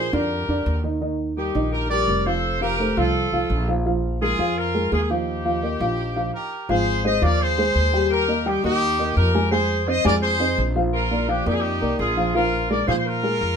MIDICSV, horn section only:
0, 0, Header, 1, 2, 480
1, 0, Start_track
1, 0, Key_signature, -3, "major"
1, 0, Tempo, 354191
1, 1378, Time_signature, 4, 2, 24, 8
1, 18382, End_track
2, 0, Start_track
2, 0, Title_t, "Horn section"
2, 0, Program_c, 0, 61
2, 0, Note_on_c, 0, 68, 87
2, 0, Note_on_c, 0, 72, 105
2, 171, Note_on_c, 0, 70, 81
2, 177, Note_off_c, 0, 72, 0
2, 179, Note_on_c, 0, 67, 64
2, 182, Note_off_c, 0, 68, 0
2, 1081, Note_off_c, 0, 70, 0
2, 1085, Note_off_c, 0, 67, 0
2, 1862, Note_on_c, 0, 67, 74
2, 1865, Note_on_c, 0, 63, 62
2, 2308, Note_off_c, 0, 67, 0
2, 2310, Note_off_c, 0, 63, 0
2, 2336, Note_on_c, 0, 70, 89
2, 2351, Note_on_c, 0, 67, 69
2, 2561, Note_off_c, 0, 70, 0
2, 2569, Note_off_c, 0, 67, 0
2, 2579, Note_on_c, 0, 74, 110
2, 2590, Note_on_c, 0, 70, 76
2, 3027, Note_off_c, 0, 74, 0
2, 3032, Note_off_c, 0, 70, 0
2, 3060, Note_on_c, 0, 72, 100
2, 3069, Note_on_c, 0, 69, 84
2, 3541, Note_off_c, 0, 72, 0
2, 3545, Note_on_c, 0, 70, 103
2, 3546, Note_off_c, 0, 69, 0
2, 3553, Note_on_c, 0, 67, 87
2, 3991, Note_off_c, 0, 70, 0
2, 3995, Note_off_c, 0, 67, 0
2, 4026, Note_on_c, 0, 69, 91
2, 4037, Note_on_c, 0, 65, 71
2, 4986, Note_off_c, 0, 69, 0
2, 4992, Note_off_c, 0, 65, 0
2, 5715, Note_on_c, 0, 65, 76
2, 5716, Note_on_c, 0, 68, 94
2, 6158, Note_off_c, 0, 65, 0
2, 6158, Note_off_c, 0, 68, 0
2, 6193, Note_on_c, 0, 70, 104
2, 6194, Note_on_c, 0, 65, 76
2, 6664, Note_off_c, 0, 65, 0
2, 6670, Note_off_c, 0, 70, 0
2, 6678, Note_on_c, 0, 68, 94
2, 6680, Note_on_c, 0, 65, 73
2, 6798, Note_off_c, 0, 68, 0
2, 6809, Note_off_c, 0, 65, 0
2, 6815, Note_on_c, 0, 68, 60
2, 6909, Note_off_c, 0, 68, 0
2, 6918, Note_on_c, 0, 67, 91
2, 6925, Note_on_c, 0, 63, 69
2, 8585, Note_off_c, 0, 67, 0
2, 8595, Note_on_c, 0, 70, 90
2, 8601, Note_on_c, 0, 67, 76
2, 8837, Note_off_c, 0, 63, 0
2, 9039, Note_off_c, 0, 70, 0
2, 9041, Note_off_c, 0, 67, 0
2, 9074, Note_on_c, 0, 72, 97
2, 9082, Note_on_c, 0, 68, 78
2, 9540, Note_off_c, 0, 72, 0
2, 9555, Note_off_c, 0, 68, 0
2, 9555, Note_on_c, 0, 75, 99
2, 9556, Note_on_c, 0, 72, 75
2, 9775, Note_off_c, 0, 72, 0
2, 9775, Note_off_c, 0, 75, 0
2, 9791, Note_on_c, 0, 74, 102
2, 9793, Note_on_c, 0, 70, 84
2, 10029, Note_off_c, 0, 74, 0
2, 10030, Note_off_c, 0, 70, 0
2, 10035, Note_on_c, 0, 72, 107
2, 10041, Note_on_c, 0, 68, 84
2, 10987, Note_on_c, 0, 70, 99
2, 10990, Note_off_c, 0, 72, 0
2, 10993, Note_off_c, 0, 68, 0
2, 10993, Note_on_c, 0, 67, 77
2, 11432, Note_off_c, 0, 70, 0
2, 11435, Note_off_c, 0, 67, 0
2, 11476, Note_on_c, 0, 67, 88
2, 11478, Note_on_c, 0, 63, 64
2, 11693, Note_off_c, 0, 67, 0
2, 11696, Note_off_c, 0, 63, 0
2, 11709, Note_on_c, 0, 67, 110
2, 11712, Note_on_c, 0, 63, 83
2, 12375, Note_off_c, 0, 67, 0
2, 12377, Note_off_c, 0, 63, 0
2, 12422, Note_on_c, 0, 70, 101
2, 12428, Note_on_c, 0, 67, 79
2, 12868, Note_off_c, 0, 70, 0
2, 12871, Note_off_c, 0, 67, 0
2, 12894, Note_on_c, 0, 72, 93
2, 12909, Note_on_c, 0, 68, 79
2, 13343, Note_off_c, 0, 72, 0
2, 13351, Note_off_c, 0, 68, 0
2, 13388, Note_on_c, 0, 75, 106
2, 13392, Note_on_c, 0, 72, 76
2, 13624, Note_off_c, 0, 75, 0
2, 13626, Note_off_c, 0, 72, 0
2, 13631, Note_on_c, 0, 74, 98
2, 13639, Note_on_c, 0, 70, 85
2, 13736, Note_off_c, 0, 74, 0
2, 13743, Note_off_c, 0, 70, 0
2, 13854, Note_on_c, 0, 72, 106
2, 13864, Note_on_c, 0, 68, 82
2, 14409, Note_off_c, 0, 72, 0
2, 14414, Note_off_c, 0, 68, 0
2, 14818, Note_on_c, 0, 70, 89
2, 14823, Note_on_c, 0, 65, 74
2, 15264, Note_off_c, 0, 70, 0
2, 15266, Note_off_c, 0, 65, 0
2, 15290, Note_on_c, 0, 67, 81
2, 15298, Note_on_c, 0, 62, 64
2, 15516, Note_off_c, 0, 67, 0
2, 15532, Note_on_c, 0, 67, 87
2, 15537, Note_off_c, 0, 62, 0
2, 15539, Note_on_c, 0, 63, 76
2, 15622, Note_off_c, 0, 67, 0
2, 15623, Note_on_c, 0, 68, 85
2, 15626, Note_off_c, 0, 63, 0
2, 15719, Note_on_c, 0, 67, 88
2, 15722, Note_off_c, 0, 68, 0
2, 15729, Note_on_c, 0, 63, 71
2, 16250, Note_on_c, 0, 68, 88
2, 16252, Note_off_c, 0, 67, 0
2, 16257, Note_off_c, 0, 63, 0
2, 16258, Note_on_c, 0, 65, 67
2, 16698, Note_off_c, 0, 68, 0
2, 16702, Note_off_c, 0, 65, 0
2, 16742, Note_on_c, 0, 70, 89
2, 16754, Note_on_c, 0, 65, 76
2, 17184, Note_off_c, 0, 70, 0
2, 17191, Note_off_c, 0, 65, 0
2, 17217, Note_on_c, 0, 74, 88
2, 17227, Note_on_c, 0, 70, 70
2, 17438, Note_off_c, 0, 74, 0
2, 17444, Note_off_c, 0, 70, 0
2, 17451, Note_on_c, 0, 72, 91
2, 17462, Note_on_c, 0, 68, 77
2, 17517, Note_off_c, 0, 72, 0
2, 17525, Note_off_c, 0, 68, 0
2, 17598, Note_on_c, 0, 72, 59
2, 17690, Note_on_c, 0, 70, 101
2, 17693, Note_off_c, 0, 72, 0
2, 17702, Note_on_c, 0, 65, 74
2, 18382, Note_off_c, 0, 65, 0
2, 18382, Note_off_c, 0, 70, 0
2, 18382, End_track
0, 0, End_of_file